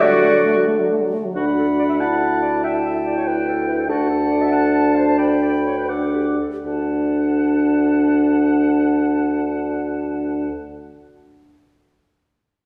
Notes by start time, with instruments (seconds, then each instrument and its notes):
0.00 bassoon D3, french horn A3, flute F#4, oboe F#4, clarinet D5
0.12 french horn F#3
0.23 french horn A3
0.34 french horn F#3
0.45 french horn A3
0.57 french horn F#3
0.67 french horn A3
0.79 french horn F#3
0.91 french horn A3
1.01 french horn F#3
1.13 french horn A3
1.24 french horn F#3
1.35 bassoon D2, french horn D4, clarinet F#4, oboe F#5, flute B5
1.58 clarinet A4
1.79 clarinet D5
1.89 clarinet E5
2.00 french horn E4, clarinet F#5, oboe A5
2.42 clarinet D5
2.64 clarinet E5, oboe G5, flute A5
2.85 clarinet E5
3.06 clarinet D5
3.17 clarinet C#5
3.27 clarinet B4, oboe G5, flute G5
3.48 clarinet A4
3.68 clarinet B4
3.79 clarinet A4
3.89 bassoon D2, french horn D4, clarinet F#4, flute F#5, oboe A5
4.10 clarinet A4
4.31 clarinet D5
4.42 clarinet E5
4.52 clarinet F#5, flute A5
4.95 clarinet C5
5.18 clarinet D5, oboe G5, flute B5
5.42 clarinet D5
5.65 clarinet C#5
5.77 clarinet B4
5.89 french horn D4, clarinet A4, oboe F#5, flute D6
6.14 clarinet G4
6.39 clarinet A4
6.53 clarinet G4
6.65 bassoon D2, french horn D4, clarinet D4, oboe F#5, flute A5